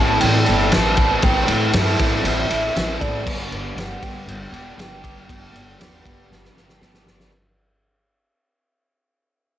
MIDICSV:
0, 0, Header, 1, 5, 480
1, 0, Start_track
1, 0, Key_signature, 1, "major"
1, 0, Tempo, 507185
1, 1166, Time_signature, 4, 2, 24, 8
1, 9072, End_track
2, 0, Start_track
2, 0, Title_t, "Soft synth lead"
2, 0, Program_c, 0, 80
2, 0, Note_on_c, 0, 81, 123
2, 191, Note_on_c, 0, 79, 122
2, 206, Note_off_c, 0, 81, 0
2, 679, Note_on_c, 0, 81, 112
2, 693, Note_off_c, 0, 79, 0
2, 1170, Note_on_c, 0, 79, 94
2, 1184, Note_off_c, 0, 81, 0
2, 1648, Note_off_c, 0, 79, 0
2, 1886, Note_on_c, 0, 76, 124
2, 2845, Note_on_c, 0, 74, 107
2, 2859, Note_off_c, 0, 76, 0
2, 3325, Note_off_c, 0, 74, 0
2, 3562, Note_on_c, 0, 78, 111
2, 3810, Note_on_c, 0, 79, 127
2, 3824, Note_off_c, 0, 78, 0
2, 6447, Note_off_c, 0, 79, 0
2, 9072, End_track
3, 0, Start_track
3, 0, Title_t, "Overdriven electric guitar"
3, 0, Program_c, 1, 29
3, 0, Note_on_c, 1, 45, 93
3, 0, Note_on_c, 1, 52, 76
3, 0, Note_on_c, 1, 60, 87
3, 0, Note_on_c, 1, 64, 91
3, 0, Note_on_c, 1, 69, 89
3, 424, Note_off_c, 1, 69, 0
3, 436, Note_on_c, 1, 69, 81
3, 438, Note_off_c, 1, 64, 0
3, 450, Note_on_c, 1, 64, 71
3, 453, Note_off_c, 1, 60, 0
3, 465, Note_on_c, 1, 60, 62
3, 670, Note_off_c, 1, 52, 0
3, 681, Note_on_c, 1, 52, 78
3, 683, Note_off_c, 1, 60, 0
3, 694, Note_off_c, 1, 64, 0
3, 694, Note_on_c, 1, 60, 79
3, 701, Note_off_c, 1, 69, 0
3, 706, Note_on_c, 1, 64, 94
3, 712, Note_on_c, 1, 69, 96
3, 906, Note_off_c, 1, 69, 0
3, 917, Note_on_c, 1, 69, 78
3, 927, Note_off_c, 1, 64, 0
3, 938, Note_on_c, 1, 64, 66
3, 941, Note_off_c, 1, 60, 0
3, 952, Note_on_c, 1, 60, 61
3, 1148, Note_off_c, 1, 52, 0
3, 1151, Note_off_c, 1, 45, 0
3, 1155, Note_on_c, 1, 45, 90
3, 1159, Note_on_c, 1, 52, 87
3, 1160, Note_off_c, 1, 60, 0
3, 1163, Note_off_c, 1, 64, 0
3, 1172, Note_off_c, 1, 69, 0
3, 1172, Note_on_c, 1, 60, 104
3, 1174, Note_on_c, 1, 64, 109
3, 1183, Note_on_c, 1, 69, 106
3, 1383, Note_off_c, 1, 69, 0
3, 1395, Note_on_c, 1, 69, 71
3, 1400, Note_off_c, 1, 64, 0
3, 1412, Note_on_c, 1, 64, 70
3, 1415, Note_off_c, 1, 60, 0
3, 1426, Note_on_c, 1, 60, 57
3, 1622, Note_off_c, 1, 52, 0
3, 1633, Note_on_c, 1, 52, 87
3, 1636, Note_off_c, 1, 60, 0
3, 1640, Note_off_c, 1, 45, 0
3, 1643, Note_off_c, 1, 64, 0
3, 1647, Note_on_c, 1, 60, 89
3, 1654, Note_off_c, 1, 69, 0
3, 1654, Note_on_c, 1, 64, 87
3, 1666, Note_on_c, 1, 69, 94
3, 2338, Note_off_c, 1, 69, 0
3, 2350, Note_on_c, 1, 69, 84
3, 2359, Note_off_c, 1, 64, 0
3, 2370, Note_on_c, 1, 64, 74
3, 2373, Note_off_c, 1, 60, 0
3, 2384, Note_on_c, 1, 60, 67
3, 2583, Note_off_c, 1, 52, 0
3, 2595, Note_on_c, 1, 52, 81
3, 2600, Note_off_c, 1, 60, 0
3, 2606, Note_off_c, 1, 64, 0
3, 2611, Note_on_c, 1, 60, 85
3, 2615, Note_off_c, 1, 69, 0
3, 2618, Note_on_c, 1, 64, 89
3, 2627, Note_on_c, 1, 69, 80
3, 2828, Note_off_c, 1, 69, 0
3, 2839, Note_on_c, 1, 69, 76
3, 2845, Note_off_c, 1, 64, 0
3, 2857, Note_on_c, 1, 64, 67
3, 2859, Note_off_c, 1, 60, 0
3, 2871, Note_on_c, 1, 60, 59
3, 3065, Note_off_c, 1, 52, 0
3, 3068, Note_off_c, 1, 69, 0
3, 3076, Note_off_c, 1, 64, 0
3, 3077, Note_on_c, 1, 43, 105
3, 3083, Note_off_c, 1, 60, 0
3, 3083, Note_on_c, 1, 50, 103
3, 3092, Note_on_c, 1, 55, 100
3, 3099, Note_on_c, 1, 59, 106
3, 3101, Note_on_c, 1, 62, 90
3, 3108, Note_on_c, 1, 67, 105
3, 3321, Note_off_c, 1, 67, 0
3, 3325, Note_on_c, 1, 67, 71
3, 3335, Note_off_c, 1, 62, 0
3, 3338, Note_on_c, 1, 62, 73
3, 3348, Note_off_c, 1, 59, 0
3, 3351, Note_off_c, 1, 55, 0
3, 3352, Note_on_c, 1, 59, 65
3, 3355, Note_on_c, 1, 55, 65
3, 3557, Note_off_c, 1, 55, 0
3, 3561, Note_on_c, 1, 55, 80
3, 3564, Note_off_c, 1, 50, 0
3, 3571, Note_off_c, 1, 59, 0
3, 3575, Note_on_c, 1, 59, 95
3, 3577, Note_off_c, 1, 62, 0
3, 3580, Note_on_c, 1, 62, 81
3, 3588, Note_off_c, 1, 67, 0
3, 3592, Note_on_c, 1, 67, 90
3, 4272, Note_off_c, 1, 67, 0
3, 4275, Note_on_c, 1, 67, 77
3, 4285, Note_off_c, 1, 62, 0
3, 4288, Note_on_c, 1, 62, 84
3, 4294, Note_off_c, 1, 59, 0
3, 4298, Note_on_c, 1, 59, 71
3, 4302, Note_off_c, 1, 55, 0
3, 4306, Note_on_c, 1, 55, 67
3, 4514, Note_off_c, 1, 55, 0
3, 4518, Note_on_c, 1, 55, 82
3, 4528, Note_off_c, 1, 59, 0
3, 4531, Note_on_c, 1, 59, 89
3, 4539, Note_off_c, 1, 62, 0
3, 4543, Note_on_c, 1, 62, 87
3, 4546, Note_off_c, 1, 67, 0
3, 4550, Note_on_c, 1, 67, 96
3, 4756, Note_off_c, 1, 67, 0
3, 4760, Note_on_c, 1, 67, 68
3, 4768, Note_off_c, 1, 62, 0
3, 4772, Note_on_c, 1, 62, 66
3, 4778, Note_off_c, 1, 59, 0
3, 4782, Note_on_c, 1, 59, 64
3, 4786, Note_off_c, 1, 55, 0
3, 4790, Note_on_c, 1, 55, 69
3, 4989, Note_off_c, 1, 43, 0
3, 4993, Note_on_c, 1, 43, 94
3, 4997, Note_off_c, 1, 55, 0
3, 4999, Note_on_c, 1, 50, 99
3, 5003, Note_off_c, 1, 59, 0
3, 5008, Note_on_c, 1, 55, 109
3, 5010, Note_off_c, 1, 62, 0
3, 5014, Note_off_c, 1, 67, 0
3, 5014, Note_on_c, 1, 59, 104
3, 5021, Note_on_c, 1, 62, 97
3, 5025, Note_on_c, 1, 67, 116
3, 5221, Note_off_c, 1, 67, 0
3, 5232, Note_off_c, 1, 62, 0
3, 5233, Note_on_c, 1, 67, 78
3, 5244, Note_on_c, 1, 62, 76
3, 5247, Note_off_c, 1, 59, 0
3, 5252, Note_off_c, 1, 55, 0
3, 5258, Note_on_c, 1, 59, 69
3, 5263, Note_on_c, 1, 55, 60
3, 5464, Note_off_c, 1, 55, 0
3, 5474, Note_off_c, 1, 59, 0
3, 5475, Note_on_c, 1, 55, 80
3, 5479, Note_off_c, 1, 43, 0
3, 5482, Note_off_c, 1, 50, 0
3, 5484, Note_off_c, 1, 62, 0
3, 5485, Note_on_c, 1, 59, 92
3, 5494, Note_off_c, 1, 67, 0
3, 5495, Note_on_c, 1, 62, 82
3, 5506, Note_on_c, 1, 67, 89
3, 6186, Note_off_c, 1, 67, 0
3, 6197, Note_on_c, 1, 67, 80
3, 6200, Note_off_c, 1, 62, 0
3, 6211, Note_off_c, 1, 59, 0
3, 6211, Note_on_c, 1, 62, 66
3, 6216, Note_off_c, 1, 55, 0
3, 6222, Note_on_c, 1, 59, 68
3, 6228, Note_on_c, 1, 55, 62
3, 6430, Note_off_c, 1, 55, 0
3, 6441, Note_on_c, 1, 55, 91
3, 6442, Note_off_c, 1, 59, 0
3, 6450, Note_off_c, 1, 62, 0
3, 6454, Note_on_c, 1, 59, 75
3, 6458, Note_off_c, 1, 67, 0
3, 6462, Note_on_c, 1, 62, 86
3, 6470, Note_on_c, 1, 67, 89
3, 6658, Note_off_c, 1, 67, 0
3, 6669, Note_on_c, 1, 67, 73
3, 6672, Note_off_c, 1, 62, 0
3, 6680, Note_off_c, 1, 59, 0
3, 6683, Note_on_c, 1, 62, 72
3, 6688, Note_off_c, 1, 55, 0
3, 6692, Note_on_c, 1, 59, 62
3, 6699, Note_on_c, 1, 55, 59
3, 6902, Note_off_c, 1, 67, 0
3, 6909, Note_off_c, 1, 62, 0
3, 6914, Note_off_c, 1, 59, 0
3, 6917, Note_off_c, 1, 55, 0
3, 9072, End_track
4, 0, Start_track
4, 0, Title_t, "Upright bass"
4, 0, Program_c, 2, 32
4, 0, Note_on_c, 2, 33, 88
4, 159, Note_off_c, 2, 33, 0
4, 219, Note_on_c, 2, 33, 93
4, 405, Note_off_c, 2, 33, 0
4, 458, Note_on_c, 2, 31, 93
4, 645, Note_off_c, 2, 31, 0
4, 700, Note_on_c, 2, 33, 91
4, 1076, Note_off_c, 2, 33, 0
4, 1167, Note_on_c, 2, 33, 97
4, 1357, Note_off_c, 2, 33, 0
4, 1408, Note_on_c, 2, 33, 88
4, 1598, Note_off_c, 2, 33, 0
4, 1646, Note_on_c, 2, 43, 99
4, 1837, Note_off_c, 2, 43, 0
4, 1891, Note_on_c, 2, 33, 92
4, 2080, Note_off_c, 2, 33, 0
4, 2124, Note_on_c, 2, 33, 102
4, 2315, Note_off_c, 2, 33, 0
4, 2370, Note_on_c, 2, 33, 94
4, 2559, Note_off_c, 2, 33, 0
4, 2611, Note_on_c, 2, 33, 94
4, 2800, Note_off_c, 2, 33, 0
4, 2857, Note_on_c, 2, 33, 91
4, 3096, Note_off_c, 2, 33, 0
4, 3096, Note_on_c, 2, 31, 98
4, 3283, Note_off_c, 2, 31, 0
4, 3327, Note_on_c, 2, 31, 90
4, 3517, Note_off_c, 2, 31, 0
4, 3561, Note_on_c, 2, 31, 98
4, 3754, Note_off_c, 2, 31, 0
4, 3813, Note_on_c, 2, 31, 90
4, 4001, Note_off_c, 2, 31, 0
4, 4037, Note_on_c, 2, 31, 101
4, 4231, Note_off_c, 2, 31, 0
4, 4279, Note_on_c, 2, 28, 102
4, 4472, Note_off_c, 2, 28, 0
4, 4524, Note_on_c, 2, 31, 91
4, 4906, Note_off_c, 2, 31, 0
4, 5010, Note_on_c, 2, 31, 99
4, 5199, Note_off_c, 2, 31, 0
4, 5236, Note_on_c, 2, 31, 95
4, 5430, Note_off_c, 2, 31, 0
4, 5482, Note_on_c, 2, 40, 102
4, 5674, Note_off_c, 2, 40, 0
4, 5731, Note_on_c, 2, 31, 95
4, 5919, Note_off_c, 2, 31, 0
4, 5967, Note_on_c, 2, 31, 90
4, 6157, Note_off_c, 2, 31, 0
4, 6207, Note_on_c, 2, 31, 90
4, 6397, Note_off_c, 2, 31, 0
4, 6447, Note_on_c, 2, 31, 94
4, 6637, Note_off_c, 2, 31, 0
4, 6685, Note_on_c, 2, 31, 86
4, 6876, Note_off_c, 2, 31, 0
4, 9072, End_track
5, 0, Start_track
5, 0, Title_t, "Drums"
5, 196, Note_on_c, 9, 51, 120
5, 290, Note_off_c, 9, 51, 0
5, 438, Note_on_c, 9, 51, 78
5, 532, Note_off_c, 9, 51, 0
5, 679, Note_on_c, 9, 51, 112
5, 686, Note_on_c, 9, 38, 118
5, 774, Note_off_c, 9, 51, 0
5, 780, Note_off_c, 9, 38, 0
5, 916, Note_on_c, 9, 51, 80
5, 924, Note_on_c, 9, 36, 95
5, 1011, Note_off_c, 9, 51, 0
5, 1019, Note_off_c, 9, 36, 0
5, 1157, Note_on_c, 9, 51, 108
5, 1165, Note_on_c, 9, 36, 120
5, 1252, Note_off_c, 9, 51, 0
5, 1260, Note_off_c, 9, 36, 0
5, 1400, Note_on_c, 9, 51, 88
5, 1495, Note_off_c, 9, 51, 0
5, 1641, Note_on_c, 9, 51, 120
5, 1648, Note_on_c, 9, 38, 122
5, 1736, Note_off_c, 9, 51, 0
5, 1743, Note_off_c, 9, 38, 0
5, 1888, Note_on_c, 9, 51, 91
5, 1889, Note_on_c, 9, 36, 94
5, 1982, Note_off_c, 9, 51, 0
5, 1984, Note_off_c, 9, 36, 0
5, 2130, Note_on_c, 9, 51, 117
5, 2224, Note_off_c, 9, 51, 0
5, 2371, Note_on_c, 9, 51, 86
5, 2466, Note_off_c, 9, 51, 0
5, 2615, Note_on_c, 9, 51, 107
5, 2622, Note_on_c, 9, 38, 117
5, 2710, Note_off_c, 9, 51, 0
5, 2717, Note_off_c, 9, 38, 0
5, 2852, Note_on_c, 9, 36, 100
5, 2858, Note_on_c, 9, 51, 79
5, 2947, Note_off_c, 9, 36, 0
5, 2953, Note_off_c, 9, 51, 0
5, 3093, Note_on_c, 9, 36, 126
5, 3097, Note_on_c, 9, 49, 115
5, 3188, Note_off_c, 9, 36, 0
5, 3192, Note_off_c, 9, 49, 0
5, 3333, Note_on_c, 9, 51, 77
5, 3428, Note_off_c, 9, 51, 0
5, 3576, Note_on_c, 9, 51, 106
5, 3583, Note_on_c, 9, 38, 125
5, 3671, Note_off_c, 9, 51, 0
5, 3677, Note_off_c, 9, 38, 0
5, 3811, Note_on_c, 9, 36, 92
5, 3812, Note_on_c, 9, 51, 84
5, 3906, Note_off_c, 9, 36, 0
5, 3907, Note_off_c, 9, 51, 0
5, 4055, Note_on_c, 9, 51, 110
5, 4150, Note_off_c, 9, 51, 0
5, 4293, Note_on_c, 9, 51, 79
5, 4387, Note_off_c, 9, 51, 0
5, 4535, Note_on_c, 9, 51, 110
5, 4542, Note_on_c, 9, 38, 114
5, 4630, Note_off_c, 9, 51, 0
5, 4636, Note_off_c, 9, 38, 0
5, 4769, Note_on_c, 9, 36, 97
5, 4773, Note_on_c, 9, 51, 84
5, 4864, Note_off_c, 9, 36, 0
5, 4867, Note_off_c, 9, 51, 0
5, 5010, Note_on_c, 9, 36, 118
5, 5015, Note_on_c, 9, 51, 121
5, 5105, Note_off_c, 9, 36, 0
5, 5110, Note_off_c, 9, 51, 0
5, 5258, Note_on_c, 9, 51, 92
5, 5352, Note_off_c, 9, 51, 0
5, 5495, Note_on_c, 9, 51, 122
5, 5502, Note_on_c, 9, 38, 127
5, 5590, Note_off_c, 9, 51, 0
5, 5597, Note_off_c, 9, 38, 0
5, 5730, Note_on_c, 9, 36, 93
5, 5737, Note_on_c, 9, 51, 91
5, 5825, Note_off_c, 9, 36, 0
5, 5832, Note_off_c, 9, 51, 0
5, 5980, Note_on_c, 9, 38, 71
5, 6075, Note_off_c, 9, 38, 0
5, 6101, Note_on_c, 9, 38, 62
5, 6196, Note_off_c, 9, 38, 0
5, 6216, Note_on_c, 9, 38, 81
5, 6311, Note_off_c, 9, 38, 0
5, 6331, Note_on_c, 9, 38, 78
5, 6426, Note_off_c, 9, 38, 0
5, 6448, Note_on_c, 9, 38, 96
5, 6542, Note_off_c, 9, 38, 0
5, 6566, Note_on_c, 9, 38, 86
5, 6661, Note_off_c, 9, 38, 0
5, 6691, Note_on_c, 9, 38, 107
5, 6785, Note_off_c, 9, 38, 0
5, 6814, Note_on_c, 9, 38, 99
5, 6908, Note_off_c, 9, 38, 0
5, 9072, End_track
0, 0, End_of_file